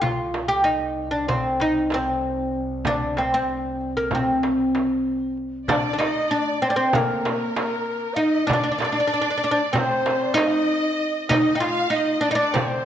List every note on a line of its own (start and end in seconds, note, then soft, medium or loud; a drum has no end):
0.01 5.74 C2 medium
0.01 0.48 F4 medium
0.01 frame drum medium
0.01 darbuka dum medium
0.34 darbuka tek medium
0.34 frame drum medium
0.48 0.64 G4 medium
0.64 1.11 D#4 medium
0.64 darbuka ka soft
1.11 1.28 D4 medium
1.28 1.61 C4 medium
1.28 frame drum medium
1.28 darbuka dum medium
1.60 1.93 D#4 medium
1.60 darbuka tek medium
1.90 2.60 C4 medium
1.90 darbuka tek medium
1.90 frame drum medium
2.85 3.18 D4 medium
2.85 frame drum medium
2.85 darbuka dum medium
3.17 3.33 C4 medium
3.17 darbuka tek medium
3.17 frame drum soft
3.34 3.96 C4 medium
3.49 darbuka ka soft
3.81 darbuka ka soft
3.97 4.12 A#3 medium
4.11 5.35 C4 medium
4.11 frame drum medium
4.11 darbuka dum medium
4.43 darbuka tek medium
4.43 frame drum medium
4.75 darbuka tek medium
4.75 frame drum medium
5.37 darbuka ka soft
5.68 5.92 D4 medium
5.68 5.98 D5 medium
5.68 darbuka dum loud
5.68 frame drum loud
5.93 5.98 D4 medium
5.98 6.30 D#4 medium
5.98 6.32 D#5 medium
5.98 6.31 D#5 medium
5.98 darbuka tek medium
5.98 frame drum medium
6.30 6.62 D4 medium
6.30 6.62 D5 medium
6.30 6.65 D5 medium
6.30 darbuka ka soft
6.62 6.69 C4 medium
6.62 6.76 C5 medium
6.62 6.87 C5 medium
6.62 darbuka ka soft
6.70 6.76 D4 medium
6.76 6.94 C4 medium
6.76 6.93 C5 medium
6.87 6.96 C5 soft
6.93 8.23 A#3 medium
6.93 8.15 A#4 medium
6.93 8.19 A#4 medium
6.93 frame drum medium
6.93 darbuka dum medium
7.25 darbuka tek medium
7.25 frame drum medium
7.56 darbuka tek medium
7.56 frame drum medium
8.14 8.47 D#4 medium
8.14 8.21 F5 medium
8.19 8.50 D#5 medium
8.19 darbuka ka soft
8.47 8.52 D4 medium
8.47 9.75 D5 medium
8.47 frame drum medium
8.47 darbuka dum medium
8.52 8.62 D4 medium
8.52 9.41 D5 medium
8.64 8.70 D4 medium
8.72 8.77 D4 medium
8.78 8.83 D4 medium
8.78 darbuka tek medium
8.78 frame drum medium
8.85 8.91 D4 soft
8.92 8.99 D4 medium
9.00 9.06 D4 medium
9.07 9.12 D4 medium
9.13 9.20 D4 medium
9.13 darbuka ka soft
9.21 9.29 D4 medium
9.30 9.36 D4 medium
9.38 9.43 D4 medium
9.44 9.50 D4 medium
9.44 9.53 D5 medium
9.44 darbuka ka soft
9.51 9.60 D4 medium
9.51 9.61 C5 medium
9.60 9.76 D5 medium
9.73 10.38 C4 medium
9.73 10.24 C5 medium
9.73 10.38 C5 medium
9.73 darbuka dum medium
9.73 frame drum medium
10.06 darbuka tek medium
10.06 frame drum medium
10.22 10.40 D5 medium
10.34 11.28 D#4 loud
10.34 11.30 D#5 medium
10.34 darbuka tek medium
10.34 frame drum medium
10.39 10.48 D#5 medium
10.46 10.54 F5 medium
10.52 11.05 D#5 medium
11.00 darbuka ka soft
11.29 11.54 D#4 loud
11.29 11.57 D#5 medium
11.29 11.60 D#5 medium
11.29 darbuka dum medium
11.29 frame drum medium
11.55 11.60 D#4 medium
11.55 11.64 G5 medium
11.60 11.90 F4 medium
11.60 11.93 F5 medium
11.60 11.95 F5 medium
11.60 darbuka tek medium
11.90 12.20 D#4 loud
11.90 12.26 D#5 medium
11.90 12.25 D#5 medium
11.90 darbuka ka soft
12.21 12.30 D4 medium
12.21 12.38 D5 medium
12.25 darbuka ka soft
12.31 12.35 D#4 medium
12.35 12.55 D4 loud
12.35 12.55 D5 medium
12.39 12.55 D5 medium
12.54 12.85 C4 medium
12.54 12.85 C5 medium
12.54 frame drum medium
12.54 darbuka dum medium